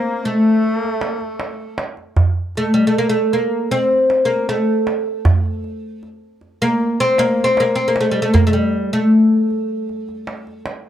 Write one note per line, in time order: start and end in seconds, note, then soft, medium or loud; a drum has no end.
0.00 0.23 A#3 medium
0.00 0.25 A#3 medium
0.00 0.27 A#3 medium
0.24 1.09 A3 medium
0.24 1.75 A3 medium
0.24 1.79 A3 medium
0.63 darbuka ka soft
0.83 darbuka ka soft
1.01 darbuka tek medium
1.09 1.21 A#3 medium
1.21 1.75 A3 medium
1.21 darbuka ka soft
1.40 darbuka tek medium
1.78 darbuka tek medium
1.97 darbuka ka soft
2.16 darbuka dum medium
2.55 2.73 A3 medium
2.55 darbuka ka soft
2.74 2.87 G3 medium
2.87 2.98 A3 medium
2.94 3.09 A#3 medium
2.94 darbuka ka soft
3.10 3.33 A3 medium
3.33 3.71 A#3 medium
3.33 darbuka ka soft
3.71 4.25 C4 medium
3.71 darbuka ka soft
3.91 darbuka ka soft
4.10 darbuka tek medium
4.25 4.49 A#3 medium
4.30 darbuka ka soft
4.49 6.07 A3 medium
4.49 darbuka tek medium
4.87 darbuka tek medium
5.25 darbuka dum loud
5.64 darbuka ka soft
6.03 darbuka ka soft
6.41 darbuka ka soft
6.62 6.97 A#3 medium
6.80 darbuka ka soft
7.00 7.20 C4 medium
7.18 7.45 A#3 loud
7.18 darbuka tek medium
7.38 darbuka ka soft
7.44 7.61 C4 medium
7.57 7.75 A#3 medium
7.57 darbuka tek medium
7.75 7.88 C4 medium
7.88 8.00 A#3 medium
7.96 darbuka tek medium
8.01 8.11 A3 medium
8.11 8.21 G3 medium
8.22 8.33 A3 medium
8.34 8.46 A#3 medium
8.34 darbuka dum medium
8.47 8.53 A3 medium
8.53 8.93 G3 medium
8.73 darbuka ka soft
8.93 10.62 A3 medium
9.12 darbuka ka soft
9.50 darbuka ka soft
9.89 darbuka ka soft
10.08 darbuka ka soft
10.27 darbuka tek medium
10.47 darbuka ka soft
10.66 darbuka tek medium